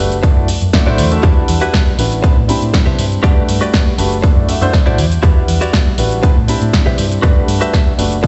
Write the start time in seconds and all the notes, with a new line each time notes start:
0.00 F#1 A3 D4 F#4 G4 B4
0.12 closed hi-hat, shaker
0.23 A3 D4 E4 F#4 D5, muted clean electric guitar stroke, kick, closed hi-hat, shaker
0.36 F#2, muted clean electric guitar stroke
0.48 open hi-hat, shaker
0.61 F#2, closed hi-hat, shaker
0.73 A3 D4 E4 F#4 D5, kick, snare, closed hi-hat
0.86 A2 A3 D4 E4 F#4 C5 D5
0.98 E2, open hi-hat, shaker
1.11 A3 D4 E4 F#4 E5, closed hi-hat, shaker
1.23 E2 G3 D4 E4 F#4 G4 D5, kick, closed hi-hat, shaker
1.48 E2, open hi-hat, shaker
1.61 E4 F#4 G4 B4, closed hi-hat, shaker
1.74 kick, snare, closed hi-hat, shaker
1.98 A1 G3 D4 E4 F#4 B4, open hi-hat, shaker
2.12 closed hi-hat, shaker
2.23 C4 D4 E4 G4 B4, muted clean electric guitar stroke, kick, closed hi-hat, shaker
2.36 A2, muted clean electric guitar stroke
2.48 C4 D4 E4 G4 B5, open hi-hat, shaker
2.62 A2, closed hi-hat, shaker
2.74 kick, snare, closed hi-hat, shaker
2.86 C3 G4 B4 C5 E5
2.98 G2, open hi-hat, shaker
3.12 closed hi-hat, shaker
3.23 G2 G3 A3 D4 F#4 G4 B4 D5 F#5, kick, closed hi-hat, shaker
3.48 G2, open hi-hat, shaker
3.61 F#4 G4 B4 D5, closed hi-hat, shaker
3.73 kick, snare, closed hi-hat
3.98 F#1 A3 D4 F#4 G4 B4, open hi-hat, shaker
4.12 closed hi-hat, shaker
4.22 A3 D4 E4 F#4 D5, muted clean electric guitar stroke, kick, closed hi-hat, shaker
4.36 F#2, muted clean electric guitar stroke
4.48 A3 D4 E4 F#4 E5, open hi-hat, shaker
4.61 F#2 A3 D4 E4 F#4 C5, closed hi-hat, shaker
4.73 A3 D4 E4 F#4 D5, kick, snare, closed hi-hat, shaker
4.86 A2 A3 D4 E4 F#4 C5 D5, closed hi-hat
4.98 E2, open hi-hat, shaker
5.12 closed hi-hat, shaker
5.23 E2 G3 D4 E4 F#4 G4 B4 D5 F#5, kick, closed hi-hat, shaker
5.48 E2, open hi-hat, shaker
5.61 E4 F#4 G4 D5, closed hi-hat, shaker
5.73 kick, snare, closed hi-hat, shaker
5.98 A1 G3 D4 E4 F#4 B4, open hi-hat, shaker
6.11 closed hi-hat, shaker
6.23 C4 D4 E4 G4 B4, muted clean electric guitar stroke, kick, closed hi-hat, shaker
6.36 A2, muted clean electric guitar stroke
6.47 C4 D4 E4 G4 B5, open hi-hat, shaker
6.62 A2, closed hi-hat, shaker
6.73 kick, snare, closed hi-hat, shaker
6.86 C3 G4 B4 C5 E5
6.98 G2, open hi-hat, shaker
7.12 closed hi-hat, shaker
7.22 G2 G3 A3 D4 F#4 G4 B4 D5 F#5, kick, closed hi-hat, shaker
7.48 G2, open hi-hat, shaker
7.61 F#4 G4 B4 E5, closed hi-hat, shaker
7.74 kick, snare, closed hi-hat, shaker
7.98 F#1 A3 D4 F#4 G4 B4, open hi-hat, shaker
8.12 closed hi-hat, shaker
8.23 A3 D4 E4 F#4 D5, muted clean electric guitar stroke, kick, closed hi-hat